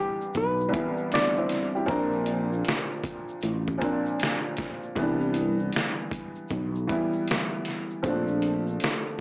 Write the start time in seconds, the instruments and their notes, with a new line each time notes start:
Already playing: felt piano C2 E3 G3 B3 D4 F4
0.00 hollow-body jazz guitar G4
0.21 shaker
0.34 fretless electric bass B1, hollow-body jazz guitar B4, kick, closed hi-hat, shaker
0.61 shaker
0.69 felt piano C2 E3 G3 B3
0.74 felt piano E4, kick, closed hi-hat, shaker
0.98 shaker
1.12 felt piano B3 D4, hollow-body jazz guitar D5, snare, closed hi-hat, shaker
1.36 felt piano C4 E4, shaker
1.49 snare, closed hi-hat
1.75 felt piano E4 G4, shaker
1.86 fretless electric bass A#1, felt piano A#2 F3 A#3, kick, closed hi-hat
1.90 felt piano C4 D4, hollow-body jazz guitar A#4, shaker
2.13 shaker
2.26 closed hi-hat, shaker
2.52 shaker
2.65 snare, closed hi-hat, shaker
2.92 shaker
3.04 kick, closed hi-hat, shaker
3.29 shaker
3.41 fretless electric bass A1, closed hi-hat, shaker
3.68 kick, shaker
3.78 felt piano A#2 F3 A#3, kick, closed hi-hat
3.82 felt piano C4 D4, shaker
4.05 shaker
4.20 snare, closed hi-hat, shaker
4.44 shaker
4.57 kick, snare, closed hi-hat
4.83 shaker
4.95 fretless electric bass C2, felt piano E3 G3 B3, kick, closed hi-hat, shaker
5.01 felt piano D4
5.21 shaker
5.34 closed hi-hat, shaker
5.60 shaker
5.73 snare, closed hi-hat, shaker
5.99 shaker
6.11 kick, closed hi-hat, shaker
6.36 shaker
6.49 fretless electric bass B1, kick, closed hi-hat, shaker
6.75 shaker
6.87 felt piano E3 G3 B3, kick, closed hi-hat, shaker
6.92 felt piano E4
7.13 shaker
7.27 snare, closed hi-hat, shaker
7.51 shaker
7.65 snare, closed hi-hat
7.90 shaker
8.03 fretless electric bass A#1, felt piano F3 A3 C4, kick, closed hi-hat, shaker
8.08 felt piano D4
8.28 shaker
8.42 closed hi-hat, shaker
8.67 shaker
8.80 snare, closed hi-hat, shaker
9.07 shaker